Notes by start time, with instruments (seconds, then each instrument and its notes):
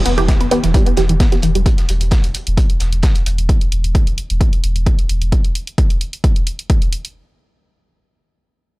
Already playing: impact
0.06 sub bass E1, synth arpeggio sound B3, closed hi-hat
0.18 sub bass E1, synth stab E3 B3 G4, synth arpeggio sound E3, closed hi-hat
0.28 synth arpeggio sound E3, kick, snare, closed hi-hat
0.41 sub bass E1, synth arpeggio sound B3, closed hi-hat
0.51 synth stab E3 B3 G4, synth arpeggio sound B3, closed hi-hat
0.63 sub bass E1, synth arpeggio sound E3, snare, closed hi-hat
0.74 synth stab E3 B3 G4, synth arpeggio sound G3, kick, closed hi-hat
0.86 synth arpeggio sound B3, closed hi-hat
0.97 sub bass E1, synth arpeggio sound E3, synth stab E3 B3 G4, snare, closed hi-hat
1.09 sub bass E1, synth arpeggio sound E3, closed hi-hat
1.20 synth arpeggio sound B3, kick, snare, closed hi-hat
1.32 synth stab E3 B3 G4, synth arpeggio sound B3, snare, closed hi-hat
1.42 sub bass E1, synth arpeggio sound E3, closed hi-hat
1.55 sub bass E1, synth arpeggio sound G3, closed hi-hat
1.66 kick, closed hi-hat
1.77 snare, closed hi-hat
1.89 sub bass E1, closed hi-hat
2.01 sub bass E1, closed hi-hat
2.11 kick, snare, closed hi-hat
2.24 sub bass E1, closed hi-hat
2.34 closed hi-hat
2.47 sub bass E1, closed hi-hat
2.57 kick, closed hi-hat
2.70 closed hi-hat
2.80 sub bass E1, snare, closed hi-hat
2.92 sub bass E1, closed hi-hat
3.03 kick, snare, closed hi-hat
3.15 closed hi-hat
3.26 sub bass E1, closed hi-hat
3.38 sub bass E1, closed hi-hat
3.49 kick, closed hi-hat
3.61 closed hi-hat
3.72 sub bass E1, closed hi-hat
3.84 sub bass E1, closed hi-hat
3.95 kick, closed hi-hat
4.07 sub bass E1, closed hi-hat
4.18 closed hi-hat
4.30 sub bass E1, closed hi-hat
4.41 kick, closed hi-hat
4.53 closed hi-hat
4.64 sub bass E1, closed hi-hat
4.76 sub bass E1, closed hi-hat
4.86 kick, closed hi-hat
4.99 closed hi-hat
5.09 sub bass E1, closed hi-hat
5.22 sub bass E1, closed hi-hat
5.32 kick, closed hi-hat
5.45 closed hi-hat
5.55 closed hi-hat
5.67 closed hi-hat
5.78 kick, closed hi-hat
5.90 closed hi-hat
6.01 closed hi-hat
6.13 closed hi-hat
6.24 kick, closed hi-hat
6.36 closed hi-hat
6.47 closed hi-hat
6.59 closed hi-hat
6.70 kick, closed hi-hat
6.82 closed hi-hat
6.93 closed hi-hat
7.05 closed hi-hat